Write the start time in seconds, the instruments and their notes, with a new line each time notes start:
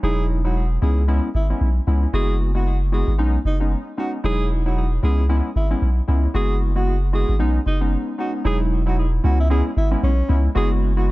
0.03 sub bass E1, synth keys F#3 G#3 D#4 E4, alto saxophone G#4
0.44 synth keys F#3 G#3 D#4 E4, alto saxophone F#4
0.82 sub bass C#2, synth keys G#3 B3 C#4 E4, alto saxophone G#4
1.08 synth keys G#3 B3 C#4 E4
1.34 sub bass G#1, alto saxophone E4
1.50 synth keys G#3 B3 C#4 E4
1.61 sub bass B1
1.87 sub bass C#2, synth keys G#3 B3 C#4 E4
2.13 sub bass F#1, synth keys G#3 B3 E4 F#4, alto saxophone G#4
2.55 synth keys G#3 B3 E4 F#4, alto saxophone F#4
2.92 synth keys G#3 B3 E4 F#4, alto saxophone G#4
3.07 sub bass G#1
3.18 sub bass B1, synth keys G#3 B3 C#4 D#4
3.45 sub bass F#1, alto saxophone D#4
3.60 synth keys G#3 B3 C#4 D#4
3.97 synth keys G#3 B3 C#4 D#4, alto saxophone F#4
4.24 sub bass E1, synth keys F#3 G#3 D#4 E4, alto saxophone G#4
4.65 synth keys F#3 G#3 D#4 E4, alto saxophone F#4
5.03 sub bass C#2, synth keys G#3 B3 C#4 E4, alto saxophone G#4
5.29 synth keys G#3 B3 C#4 E4
5.56 sub bass G#1, alto saxophone E4
5.70 synth keys G#3 B3 C#4 E4
5.82 sub bass B1
6.08 sub bass C#2, synth keys G#3 B3 C#4 E4
6.34 sub bass F#1, synth keys G#3 B3 E4 F#4, alto saxophone G#4
6.76 synth keys G#3 B3 E4 F#4, alto saxophone F#4
7.13 synth keys G#3 B3 E4 F#4, alto saxophone G#4
7.29 sub bass G#1
7.39 sub bass B1, synth keys G#3 B3 C#4 D#4
7.66 sub bass F#1, alto saxophone D#4
7.81 synth keys G#3 B3 C#4 D#4
8.18 synth keys G#3 B3 C#4 D#4, alto saxophone F#4
8.44 sub bass E1, synth keys F#3 G#3 D#4 E4, alto saxophone G#4
8.86 synth keys F#3 G#3 D#4 E4, alto saxophone F#4
9.24 sub bass C#2, synth keys G#3 B3 C#4 E4, alto saxophone F#4
9.40 alto saxophone E4
9.50 synth keys G#3 B3 C#4 E4, alto saxophone G#4
9.77 sub bass G#1, alto saxophone E4
9.91 synth keys G#3 B3 C#4 E4
10.03 sub bass B1, alto saxophone C#4
10.29 sub bass C#2, synth keys G#3 B3 C#4 E4
10.55 sub bass F#1, synth keys G#3 B3 E4 F#4, alto saxophone G#4
10.97 synth keys G#3 B3 E4 F#4, alto saxophone F#4